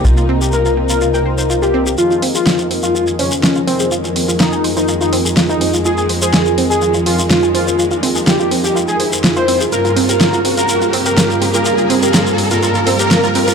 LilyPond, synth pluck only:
\new Staff \with { instrumentName = "Synth pluck" } { \time 4/4 \key f \minor \tempo 4 = 124 f'16 f'16 c'16 g'16 f'16 f'16 c'16 f'16 f'16 g''16 c''16 c''16 f'16 f'16 c'16 g'16 | f'16 f'16 c'16 aes'16 f'16 f'16 c'16 f'16 f'16 aes''16 c''16 c''16 f'16 f'16 c'16 aes'16 | f'16 f'16 c'16 f'16 f'16 aes''16 c''16 c''16 f'16 f'16 c'16 aes'16 f'16 f'16 c'16 f'16 | f'16 aes''16 c''16 c''16 f'16 f'16 c'16 aes'16 f'16 f'16 c'16 f'16 f'16 aes''16 c''16 c''16 |
f'16 f'16 c'16 aes'16 f'16 f'16 c'16 f'16 f'16 aes''16 c''16 c''16 f'16 f'16 c'16 aes'16 | f'16 f'16 c'16 g'16 f'16 f'16 c'16 f'16 f'16 f'16 c'16 g'16 f'16 f'16 c'16 f'16 | f'16 f'16 c'16 g'16 f'16 f'16 c'16 f'16 f'16 f'16 c'16 g'16 f'16 f'16 c'16 f'16 | }